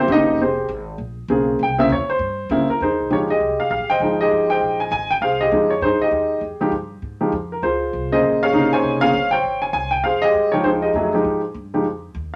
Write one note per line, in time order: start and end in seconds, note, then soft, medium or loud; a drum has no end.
0.08 0.37 G1 loud
0.08 0.39 C#3 medium
0.08 0.39 A#3 medium
0.08 0.39 C4 medium
0.08 0.40 G4 medium
0.12 0.39 D#4 medium
0.12 0.39 D#5 loud
0.38 0.68 F1 medium
0.38 0.69 C4 medium
0.38 0.68 C5 medium
0.42 0.69 G4 medium
0.42 0.69 G#4 medium
0.68 0.98 G#1 loud
0.98 1.28 A#1 medium
1.28 1.58 B1 loud
1.28 1.60 C#3 medium
1.28 1.60 A#3 medium
1.28 1.60 C4 medium
1.28 1.60 G#4 medium
1.59 1.89 C2 medium
1.59 1.79 G5 medium
1.78 1.89 C#3 medium
1.78 1.89 A#3 medium
1.78 1.89 C4 medium
1.78 1.89 E4 medium
1.78 1.91 E5 loud
1.89 2.07 E2 loud
1.89 2.09 C#5 medium
2.08 2.48 C5 medium
2.08 muted upright bass stroke soft
2.19 2.49 G2 medium
2.50 2.67 G2 loud
2.50 2.67 C#3 medium
2.50 2.67 A#3 medium
2.50 2.67 C4 medium
2.50 2.67 E4 medium
2.68 2.82 A#4 medium
2.68 muted upright bass stroke soft
2.81 2.91 F2 medium
2.81 3.09 D#4 medium
2.81 3.29 G#4 medium
2.81 3.12 C5 medium
2.91 3.00 D#2 soft
3.00 3.10 C2 medium
3.10 3.40 D#2 medium
3.10 3.27 F3 medium
3.10 3.27 G#3 medium
3.10 3.27 D#4 medium
3.10 3.27 G4 medium
3.10 3.18 C#5 medium
3.30 3.86 G4 medium
3.30 3.86 G#4 medium
3.30 3.61 D#5 medium
3.40 3.51 C2 medium
3.50 3.59 G#1 soft
3.59 3.69 F1 medium
3.59 3.69 F5 medium
3.70 3.81 A#1 medium
3.70 3.88 F5 medium
3.80 3.90 G#1 medium
3.90 3.99 F1 medium
3.90 4.46 C5 medium
3.90 4.19 D#5 medium
3.90 4.00 G5 loud
4.00 4.30 G#1 medium
4.00 4.85 F3 medium
4.00 4.85 G#3 medium
4.00 4.85 D#4 medium
4.00 4.48 G5 medium
4.21 4.77 G4 medium
4.21 4.77 G#4 medium
4.21 4.50 D#5 loud
4.30 4.60 G1 medium
4.50 5.07 C5 medium
4.50 5.07 D#5 medium
4.50 4.78 G5 loud
4.61 4.90 A#1 medium
4.80 4.90 G#5 medium
4.91 5.21 G#1 medium
4.91 5.11 G#5 loud
5.11 5.16 G5 loud
5.21 5.51 C2 medium
5.21 5.41 G#4 medium
5.21 5.79 C5 medium
5.21 5.39 F5 medium
5.41 5.51 G4 medium
5.41 5.83 G#4 medium
5.41 5.71 D#5 loud
5.52 5.81 F2 medium
5.52 5.69 F3 medium
5.52 5.69 G#3 medium
5.52 5.69 D#4 medium
5.52 5.69 G4 medium
5.70 5.83 C#5 medium
5.81 5.99 G2 medium
5.81 6.40 D#4 medium
5.81 6.02 G#4 medium
5.81 5.99 C5 medium
5.99 6.40 D#5 medium
5.99 muted upright bass stroke soft
6.04 6.58 G4 medium
6.04 6.58 G#4 medium
6.11 6.40 D#2 medium
6.41 6.59 F2 medium
6.60 6.71 F3 medium
6.60 6.71 G#3 medium
6.60 6.71 D#4 medium
6.60 6.72 G4 medium
6.60 muted upright bass stroke soft
6.72 7.01 G2 medium
7.02 7.32 G#2 medium
7.21 7.31 F3 medium
7.21 7.31 G#3 medium
7.21 7.32 D#4 medium
7.21 7.32 G4 medium
7.32 7.62 F2 medium
7.52 7.63 A#4 medium
7.62 7.92 C#2 medium
7.62 8.19 F4 medium
7.62 8.11 G#4 medium
7.62 8.08 C5 medium
7.93 8.22 C2 medium
8.12 8.51 C#3 medium
8.12 8.51 A#3 medium
8.12 8.51 C4 medium
8.12 8.42 G#4 medium
8.12 8.69 C5 medium
8.12 8.43 D#5 medium
8.23 8.52 A#1 medium
8.43 8.99 G#4 medium
8.43 8.72 C#5 medium
8.43 8.70 F5 loud
8.53 8.82 G#1 medium
8.53 8.98 C3 medium
8.53 8.98 C#3 medium
8.53 8.98 A#3 medium
8.53 8.98 D#4 medium
8.73 9.29 C5 medium
8.73 9.01 C#5 medium
8.73 9.03 G#5 loud
8.83 9.12 F1 medium
9.01 9.12 C#3 medium
9.01 9.12 A#3 medium
9.01 9.12 C4 medium
9.01 9.13 G#4 medium
9.01 9.31 C#5 medium
9.01 9.29 F5 loud
9.13 9.43 G1 medium
9.31 9.88 C5 medium
9.31 9.88 C#5 medium
9.31 9.59 G5 loud
9.43 9.72 G#1 medium
9.62 9.67 G#5 medium
9.73 10.03 C2 medium
9.73 9.92 G#5 loud
9.91 10.03 G5 medium
10.04 10.33 F2 medium
10.04 10.22 G#4 medium
10.04 10.61 C5 medium
10.04 10.21 F5 medium
10.22 10.79 G4 medium
10.22 10.65 G#4 medium
10.22 10.53 D#5 loud
10.34 10.63 G2 medium
10.52 10.92 F3 medium
10.52 10.92 G#3 medium
10.52 10.65 D#4 medium
10.52 10.63 C#5 medium
10.52 10.93 G5 medium
10.64 10.93 D#2 medium
10.64 11.13 D#4 medium
10.64 10.83 G#4 medium
10.64 10.69 C5 medium
10.82 11.13 G4 medium
10.82 10.94 G#4 medium
10.82 11.22 D#5 medium
10.94 11.23 F2 medium
10.94 11.11 F#3 medium
10.94 11.11 A3 medium
10.94 11.12 E4 medium
10.94 11.12 G#4 medium
11.14 11.40 F3 medium
11.14 11.40 G#3 medium
11.14 11.40 D#4 medium
11.14 11.40 G4 medium
11.24 11.54 G#2 medium
11.54 11.84 G2 medium
11.74 11.84 F3 medium
11.74 11.84 G#3 medium
11.74 11.84 D#4 medium
11.74 11.84 G4 medium
11.84 12.14 F2 medium
12.15 12.36 D#2 medium